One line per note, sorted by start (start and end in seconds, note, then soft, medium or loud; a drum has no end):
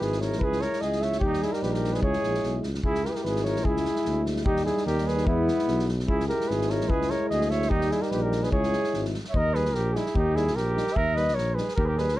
0.00 0.43 G#1 medium
0.00 1.19 G#3 soft
0.00 1.19 E4 soft
0.00 0.21 G#4 medium
0.00 0.20 B4 medium
0.00 snare soft
0.12 snare soft
0.20 0.45 A#4 medium
0.20 0.41 C#5 medium
0.20 snare soft
0.32 snare soft
0.39 0.63 C#2 medium
0.39 0.62 B4 loud
0.39 kick medium
0.44 0.64 G#4 loud
0.52 snare soft
0.60 0.84 A#4 medium
0.60 0.82 C#5 loud
0.60 snare soft
0.73 snare soft
0.81 1.24 C#2 medium
0.81 1.05 G#4 medium
0.81 1.03 D#5 medium
0.81 snare soft
0.92 snare soft
1.01 1.23 C#5 medium
1.01 1.19 E5 medium
1.01 snare soft
1.12 snare soft
1.20 1.44 D#2 medium
1.20 2.04 G3 medium
1.20 2.04 D#4 medium
1.20 1.43 G4 loud
1.20 kick medium
1.25 1.46 D#4 medium
1.33 snare soft
1.42 1.56 E4 medium
1.42 1.54 G#4 medium
1.42 snare soft
1.52 1.62 G4 medium
1.52 1.64 A#4 medium
1.52 snare soft
1.62 2.04 A#1 medium
1.62 1.74 G4 medium
1.62 1.74 B4 medium
1.62 snare soft
1.72 1.96 G4 medium
1.72 1.94 A#4 medium
1.72 snare soft
1.84 snare soft
1.93 2.02 G#4 medium
1.93 2.02 B4 medium
1.93 snare soft
2.02 2.14 C#2 medium
2.02 2.68 G#3 medium
2.02 2.68 E4 medium
2.02 2.60 G#4 medium
2.02 2.60 C#5 loud
2.02 kick medium
2.13 snare soft
2.23 2.42 A#1 medium
2.23 snare soft
2.34 snare soft
2.43 2.62 B1 medium
2.43 snare soft
2.63 2.82 C#2 medium
2.63 snare soft
2.74 snare soft
2.84 3.06 C#2 medium
2.84 4.47 G#3 medium
2.84 4.43 E4 medium
2.84 3.08 E4 medium
2.84 3.05 G#4 medium
2.84 kick medium
2.95 snare soft
3.04 3.13 G4 medium
3.04 3.11 A#4 medium
3.04 snare soft
3.09 3.18 G#4 soft
3.09 3.17 B4 medium
3.15 3.25 G4 medium
3.15 3.23 A#4 medium
3.15 snare soft
3.23 3.67 G#1 medium
3.23 3.44 G#4 medium
3.23 3.43 B4 medium
3.23 snare soft
3.36 snare soft
3.43 3.67 A#4 medium
3.43 3.65 C#5 medium
3.43 snare soft
3.56 snare soft
3.64 3.87 C#2 medium
3.64 4.26 E4 medium
3.64 4.25 G#4 medium
3.64 kick medium
3.76 snare soft
3.85 snare soft
3.96 snare soft
4.05 4.48 D2 medium
4.05 snare soft
4.26 snare soft
4.36 snare soft
4.44 4.68 D#2 medium
4.44 5.28 G3 medium
4.44 4.64 D#4 medium
4.44 5.30 D#4 medium
4.44 4.64 G4 loud
4.44 kick loud
4.56 snare soft
4.64 4.84 E4 medium
4.64 4.85 G#4 medium
4.64 snare soft
4.77 snare soft
4.85 5.29 D#2 loud
4.85 5.09 G4 medium
4.85 5.09 A#4 medium
4.85 snare soft
4.98 snare soft
5.07 5.28 G#4 medium
5.07 5.29 B4 medium
5.07 snare soft
5.17 snare soft
5.26 5.50 E2 loud
5.26 5.92 G#3 medium
5.26 5.88 B3 medium
5.26 5.88 E4 medium
5.26 5.93 E4 medium
5.26 kick medium
5.48 snare soft
5.59 snare soft
5.67 6.11 B1 medium
5.67 snare soft
5.79 snare soft
5.88 snare soft
5.99 snare soft
6.07 6.31 C#2 medium
6.07 7.68 G#3 medium
6.07 6.27 E4 medium
6.07 7.67 E4 medium
6.07 6.27 G#4 medium
6.07 kick medium
6.20 snare soft
6.27 6.51 G4 medium
6.27 6.49 A#4 loud
6.27 snare soft
6.41 snare soft
6.48 6.92 G#1 medium
6.48 6.72 G#4 medium
6.48 6.71 B4 medium
6.48 snare soft
6.61 snare soft
6.69 6.92 A#4 medium
6.69 6.90 C#5 medium
6.69 snare soft
6.81 snare soft
6.89 7.13 C#2 medium
6.89 7.12 G#4 medium
6.89 7.12 B4 medium
6.89 kick medium
7.02 snare soft
7.10 7.31 A#4 medium
7.10 7.29 C#5 loud
7.10 snare soft
7.30 7.73 D2 medium
7.30 7.52 G#4 medium
7.30 7.52 D#5 medium
7.30 snare soft
7.41 snare soft
7.50 7.71 C#5 medium
7.50 7.72 E5 medium
7.50 snare soft
7.62 snare soft
7.69 7.94 D#2 medium
7.69 8.54 G3 medium
7.69 7.93 D#4 loud
7.69 8.53 D#4 medium
7.69 7.92 G4 loud
7.69 kick medium
7.81 snare soft
7.91 8.04 E4 medium
7.91 8.03 G#4 loud
7.91 snare soft
8.02 8.11 G4 medium
8.02 8.12 A#4 medium
8.02 snare soft
8.11 8.55 A#1 medium
8.11 8.23 G4 medium
8.11 8.23 B4 medium
8.11 snare soft
8.22 8.44 G4 medium
8.22 8.45 A#4 medium
8.32 snare soft
8.43 8.50 G#4 medium
8.43 8.51 B4 medium
8.43 snare soft
8.51 8.76 C#2 medium
8.51 9.18 G#3 medium
8.51 9.18 E4 medium
8.51 9.09 G#4 medium
8.51 9.09 C#5 loud
8.51 kick medium
8.63 snare soft
8.73 snare soft
8.84 snare soft
8.94 9.16 G#1 medium
8.94 snare soft
9.05 snare soft
9.14 snare soft
9.24 snare soft
9.29 9.38 C#5 medium
9.29 9.35 E5 medium
9.34 9.77 D#2 medium
9.34 9.57 A#4 medium
9.34 9.55 D#5 loud
9.34 kick medium
9.54 9.63 G3 medium
9.54 9.63 D#4 medium
9.54 9.77 G#4 medium
9.54 9.75 B4 loud
9.54 snare soft
9.65 snare soft
9.74 9.97 A#1 medium
9.74 9.99 G4 medium
9.74 9.95 A#4 medium
9.74 snare soft
9.94 10.03 G3 medium
9.94 10.03 D#4 medium
9.94 10.18 E4 medium
9.94 10.16 G#4 medium
9.94 snare soft
10.06 snare soft
10.15 10.58 D#2 loud
10.15 10.38 D#4 medium
10.15 10.37 G4 loud
10.15 kick medium
10.35 10.44 G3 medium
10.35 10.43 D#4 medium
10.35 10.57 E4 medium
10.35 10.57 G#4 loud
10.35 snare soft
10.47 snare soft
10.55 10.79 A#1 medium
10.55 10.98 G4 medium
10.55 10.95 A#4 medium
10.55 snare soft
10.75 10.85 G3 medium
10.75 10.84 D#4 medium
10.75 snare soft
10.87 snare soft
10.93 11.38 D#2 medium
10.93 11.18 A#4 loud
10.93 11.16 E5 loud
10.93 kick medium
11.14 11.25 G3 medium
11.14 11.24 D#4 medium
11.14 11.38 B4 medium
11.14 11.36 D#5 loud
11.14 snare soft
11.28 snare soft
11.35 11.59 A#1 medium
11.35 11.56 A#4 medium
11.35 11.56 C#5 loud
11.35 snare soft
11.55 11.65 G3 medium
11.55 11.66 D#4 medium
11.55 11.77 G#4 medium
11.55 11.75 B4 medium
11.55 snare soft
11.68 snare soft
11.75 12.20 D#2 loud
11.75 11.85 G4 medium
11.75 11.86 A#4 loud
11.75 kick medium
11.84 11.96 G4 medium
11.84 11.87 G#4 medium
11.84 12.00 A#4 medium
11.84 11.88 B4 medium
11.95 12.06 G3 medium
11.95 12.06 D#4 medium
11.95 12.17 G#4 medium
11.95 12.19 B4 medium
11.95 snare soft
12.08 snare soft
12.15 12.20 A#4 medium